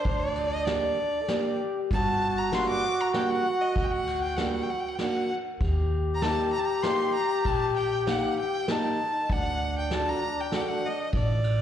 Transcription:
0.00 1.23 D4 medium
0.00 0.20 C5 medium
0.05 0.79 D2 medium
0.05 kick medium
0.05 ride soft
0.19 0.50 D5 medium
0.36 ride medium
0.49 0.67 D#5 medium
0.65 0.98 A#3 medium
0.65 0.98 D4 medium
0.65 0.98 G4 medium
0.65 1.59 D5 medium
0.65 snare medium
0.65 ride soft
1.22 1.31 A4 medium
1.28 1.60 A#3 medium
1.28 1.60 D4 medium
1.28 1.92 G4 medium
1.28 1.60 G4 medium
1.28 snare medium
1.28 ride soft
1.91 2.65 G1 loud
1.91 5.30 F#4 loud
1.91 2.40 A5 loud
1.91 kick medium
1.91 ride medium
2.38 2.56 A#5 medium
2.52 2.83 G3 medium
2.52 2.83 A#3 medium
2.52 2.83 D4 medium
2.52 2.69 C6 medium
2.52 snare medium
2.52 ride medium
2.70 3.02 D6 loud
3.00 3.15 A#5 medium
3.14 3.45 G3 medium
3.14 3.45 A#3 medium
3.14 3.45 D4 medium
3.14 3.32 G5 medium
3.14 snare medium
3.14 ride soft
3.31 3.63 F#5 medium
3.61 3.85 D#5 medium
3.75 4.50 D2 medium
3.75 kick medium
3.75 ride soft
3.84 3.93 G5 medium
3.91 4.22 F#5 medium
4.07 ride soft
4.23 4.38 G5 medium
4.36 4.69 G3 medium
4.36 4.69 A#3 medium
4.36 4.69 D4 medium
4.36 4.48 F#5 medium
4.36 snare medium
4.36 ride soft
4.46 4.55 G5 soft
4.54 4.64 F#5 medium
4.63 4.71 G5 medium
4.70 4.81 F#5 medium
4.80 4.89 G5 medium
4.88 4.97 F#5 medium
4.95 5.05 G5 medium
4.95 snare medium
4.95 ride soft
5.00 5.30 A#3 medium
5.00 5.30 D4 medium
5.00 5.30 F#4 medium
5.04 5.31 F#5 medium
5.61 6.34 D#2 medium
5.61 8.69 G4 loud
5.61 kick medium
5.61 ride soft
6.15 6.23 A#5 medium
6.21 6.53 A#3 medium
6.21 6.53 D#4 soft
6.21 6.53 G4 medium
6.21 6.52 A5 medium
6.21 snare medium
6.21 ride medium
6.53 6.61 A#5 loud
6.59 6.66 A5 medium
6.65 6.84 A#5 medium
6.83 7.15 A#3 medium
6.83 7.15 D#4 medium
6.83 7.15 G4 medium
6.83 7.14 C6 medium
6.83 snare medium
6.83 ride medium
7.14 7.47 A#5 loud
7.45 8.19 A#1 medium
7.45 7.76 A5 loud
7.45 kick medium
7.45 ride medium
7.76 8.05 G5 medium
7.76 ride soft
8.06 8.37 A#3 medium
8.06 8.38 D#4 medium
8.06 8.38 F#5 medium
8.06 8.36 F#5 medium
8.06 snare medium
8.06 ride soft
8.40 8.72 G5 medium
8.67 8.99 A#3 medium
8.67 9.31 D#4 medium
8.67 8.99 D#4 medium
8.67 8.99 G4 medium
8.67 9.33 A5 medium
8.67 snare medium
8.67 ride soft
9.29 10.03 D2 medium
9.29 11.47 D4 medium
9.29 9.77 F#5 medium
9.29 kick medium
9.29 ride soft
9.79 9.95 G5 medium
9.90 10.21 A3 medium
9.90 10.21 D4 medium
9.90 10.21 F#4 medium
9.90 10.10 A5 medium
9.90 snare medium
9.90 ride soft
10.09 10.42 A#5 medium
10.41 10.57 G5 medium
10.52 10.82 A3 medium
10.52 10.83 D4 medium
10.52 10.83 F#4 medium
10.52 10.63 F#5 medium
10.52 snare medium
10.52 ride soft
10.61 10.69 G5 medium
10.68 10.87 F#5 medium
10.86 11.15 D#5 medium
11.12 11.62 A1 medium
11.12 11.62 D5 medium
11.12 kick medium
11.12 ride soft
11.44 ride soft

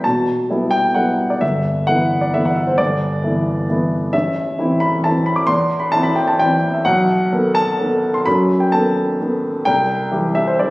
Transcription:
0.04 0.49 B2 medium
0.04 0.73 A5 medium
0.50 0.93 G3 soft
0.50 0.93 B3 soft
0.50 0.93 E4 soft
0.71 0.95 G5 medium
0.94 1.38 G3 soft
0.94 1.38 B3 soft
0.94 1.38 E4 soft
0.94 1.30 F#5 medium
1.30 1.42 D5 medium
1.41 1.87 G1 medium
1.41 1.88 E5 medium
1.87 2.31 E3 soft
1.87 2.31 B3 soft
1.87 2.31 E4 soft
1.87 2.23 F#5 medium
2.21 2.34 D5 medium
2.34 2.75 E3 soft
2.34 2.75 B3 soft
2.34 2.76 E4 soft
2.34 2.46 E5 medium
2.45 2.57 F#5 medium
2.56 2.68 E5 medium
2.67 2.79 C5 medium
2.78 3.22 G1 medium
2.78 3.91 D5 medium
3.24 3.65 E3 soft
3.24 3.66 B3 soft
3.24 3.66 E4 soft
3.70 4.10 E3 soft
3.70 4.10 B3 soft
3.70 4.11 E4 soft
4.13 4.57 A1 medium
4.13 4.81 E5 medium
4.59 5.00 E3 soft
4.59 5.01 C4 soft
4.59 5.01 E4 medium
4.80 5.04 B5 medium
5.04 5.45 E3 soft
5.04 5.45 C4 soft
5.04 5.46 E4 medium
5.04 5.27 A5 medium
5.26 5.37 B5 medium
5.36 5.48 D6 medium
5.47 5.91 E2 medium
5.47 5.81 C6 medium
5.80 5.92 B5 medium
5.92 6.35 E3 soft
5.92 6.36 C4 soft
5.92 6.36 E4 medium
5.92 6.04 A5 medium
6.03 6.15 B5 medium
6.16 6.28 G5 medium
6.28 6.39 A5 medium
6.39 6.82 E3 medium
6.39 6.82 C4 soft
6.39 6.82 E4 soft
6.39 6.74 G5 medium
6.74 6.85 E5 medium
6.85 7.30 B1 medium
6.85 7.55 F#5 medium
7.32 7.76 D#3 medium
7.32 7.76 B3 medium
7.32 7.76 A4 medium
7.55 8.14 A5 loud
7.80 8.22 D#3 soft
7.80 8.23 B3 soft
7.80 8.23 A4 medium
8.14 8.26 C6 medium
8.26 8.71 F#2 medium
8.26 8.60 B5 medium
8.60 8.72 G5 medium
8.72 9.16 D#3 soft
8.72 9.17 B3 medium
8.72 9.17 A4 medium
8.72 9.66 A5 medium
9.20 9.62 D#3 soft
9.20 9.63 B3 soft
9.20 9.63 A4 soft
9.65 10.11 C2 medium
9.65 10.35 G5 medium
10.12 10.56 E3 soft
10.12 10.56 G3 soft
10.12 10.56 G4 medium
10.35 10.47 E5 medium
10.47 10.60 C5 medium
10.59 10.70 E3 soft
10.59 10.70 G3 soft
10.59 10.70 G4 soft
10.59 10.70 D5 medium

